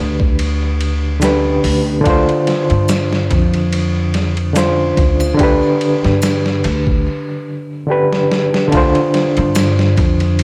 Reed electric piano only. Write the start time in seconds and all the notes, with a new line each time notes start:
Already playing: D3 D4 G4 B4
1.20 D3 D4 G4
1.24 B4
2.01 D3 D4
2.07 F4 C5
4.53 D3 D4 F4
4.57 C5
5.34 D3 D4
5.40 G4 B4
7.87 D3 D4 G4
7.91 B4
8.68 D3 D4
8.74 F4 C5